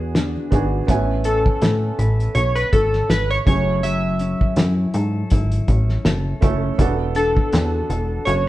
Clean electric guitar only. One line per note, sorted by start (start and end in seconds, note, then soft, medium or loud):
0.00 2.90 E3 medium
0.00 0.50 F#4 medium
0.15 0.97 D4 medium
0.51 0.97 F#4 medium
0.89 3.47 A3 medium
1.26 2.74 C#4 medium
1.99 3.09 B4 medium
2.74 4.20 C#4 medium
3.10 3.55 B4 medium
3.47 3.84 F#3 medium
3.84 6.82 F#3 medium
4.21 5.67 C#4 medium
4.57 5.32 E4 medium
4.95 6.05 A4 medium
5.32 7.19 E4 medium
5.69 6.41 C#4 medium
6.06 7.89 A4 medium
6.42 6.87 C#4 medium
6.79 8.48 E3 medium
7.16 8.48 D4 medium
7.53 8.25 F#4 medium
7.90 8.48 A4 medium
8.27 8.48 F#4 medium